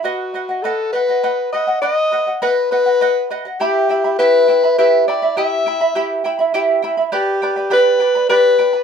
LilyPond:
<<
  \new Staff \with { instrumentName = "Charango" } { \time 6/8 \key b \phrygian \tempo 4. = 68 <b' dis'' fis''>8 <b' dis'' fis''>16 <dis'' fis''>16 <b' dis'' fis''>8 <b' dis'' fis''>16 <dis'' fis''>16 <b' dis'' fis''>8 <b' dis'' fis''>16 <dis'' fis''>16 | <b' dis'' fis''>8 <b' dis'' fis''>16 <dis'' fis''>16 <b' dis'' fis''>8 <b' dis'' fis''>16 <dis'' fis''>16 <b' dis'' fis''>8 <b' dis'' fis''>16 <dis'' fis''>16 | <e' g' e'' g'' b''>8 <e' e'' g'' b''>16 <e' e'' b''>16 <e' g' e'' g'' b''>8 <e' e'' g'' b''>16 <e' e'' b''>16 <e' g' e'' g'' b''>8 <e' e'' g'' b''>16 <e' e'' b''>16 | <e' g' e'' g'' b''>8 <e' e'' g'' b''>16 <e' e'' b''>16 <e' g' e'' g'' b''>8 <e' e'' g'' b''>16 <e' e'' b''>16 <e' g' e'' g'' b''>8 <e' e'' g'' b''>16 <e' e'' b''>16 |
<g' b' d'' g'' b''>8 <b' d'' g'' b''>16 <b' d'' b''>16 <g' b' d'' g'' b''>8 <b' d'' g'' b''>16 <b' d'' b''>16 <g' b' d'' g'' b''>8 <b' d'' g'' b''>16 <b' d'' b''>16 | }
  \new Staff \with { instrumentName = "Alto saxophone" } { \time 6/8 \key b \phrygian fis'4 a'8 b'4 dis''8 | dis''4 b'8 b'4 r8 | g'4 b'4 b'8 d''8 | e''4. r4. |
g'4 b'4 b'4 | }
>>